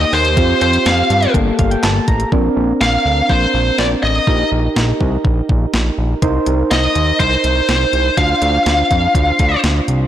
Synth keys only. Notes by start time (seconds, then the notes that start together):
Already playing: A#3 D#4 G4
0.37 C4 F4 G4
1.35 A#3 G4 A4
1.59 F5
1.71 G5
1.83 A5
2.08 A#5
2.32 C4 D4 A#4
4.27 D#4 G4 A#4
6.22 D#4 A#4 C5
8.17 D4 F4 C5